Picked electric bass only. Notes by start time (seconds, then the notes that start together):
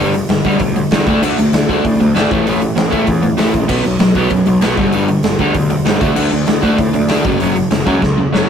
0.00 G1
0.30 G1
0.45 D2
0.61 D2
0.91 E2
1.06 D2
1.22 D2
1.38 D2
1.53 D2
1.69 D2
1.85 A2
2.00 D2
2.15 G#1
2.31 A1
2.46 A1
2.76 A1
2.92 E2
3.08 E2
3.37 A1
3.54 A#1
3.69 B1
3.85 B1
4.01 B1
4.15 B1
4.31 F#2
4.47 B1
4.64 B1
4.78 G1
4.93 G1
5.24 G1
5.39 D2
5.55 D2
5.86 G1
6.01 D2
6.18 D2
6.33 D2
6.48 D2
6.63 D2
6.79 A2
6.94 D2
7.09 D2
7.25 F#1
7.40 F#1
7.71 F#1
7.87 C#2
8.02 C#2
8.33 F#1